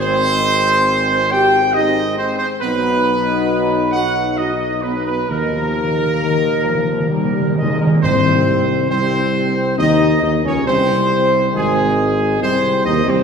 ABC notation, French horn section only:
X:1
M:3/4
L:1/16
Q:1/4=68
K:Ab
V:1 name="French horn section"
[A,C]8 [A,C]4 | [^F,^D]8 [F,D]4 | [F,E]4 E,2 F,2 G,2 A,2 | C4 C4 E2 E D |
C4 A,4 C2 E C |]